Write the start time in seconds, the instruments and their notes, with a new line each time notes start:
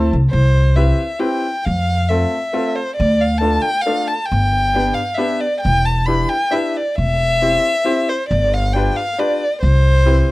Already playing: upright piano A3 C4 E4 A4 C5
0.13 upright bass C2
0.31 upright bass C2, violin C5
0.76 upright piano C4 E4 G4 B4, violin E5
1.19 upright piano C4 E4 G4 B4, violin G5
1.65 upright bass F2, violin F5
2.09 upright piano A3 C4 F4 A4, violin E5
2.53 upright piano A3 C4 F4 A4
2.76 violin C5
2.96 upright bass D2, violin D5
3.21 violin F5
3.38 upright piano A3 D4, violin A5
3.42 upright piano F4 A4
3.62 violin G5
3.82 violin F5
3.86 upright piano A3 D4 F4 A4
4.08 violin A5
4.26 violin G5
4.32 upright bass G1
4.74 upright piano B3 D4 G4 B4
4.94 violin F5
5.14 upright piano B3 D4 G4, violin E5
5.18 upright piano B4
5.41 violin D5
5.61 violin G5
5.65 upright bass E1
5.85 violin A5
6.06 upright piano D4 E4 G4 B4, violin B5
6.29 violin G5
6.51 upright piano D4 E4 G4 B4, violin E5
6.77 violin D5
6.95 upright bass E1, violin E5
7.42 upright piano C4 E4 G4 C5
7.85 upright piano C4 E4 G4 C5
8.09 violin C5
8.29 upright bass G1, violin D5
8.54 violin F5
8.73 upright piano D4 F4 G4 B4, violin G5
8.96 violin F5
9.18 upright piano D4 F4 G4 B4, violin D5
9.62 upright bass C2, violin C5
10.06 upright piano C4 E4 G4 B4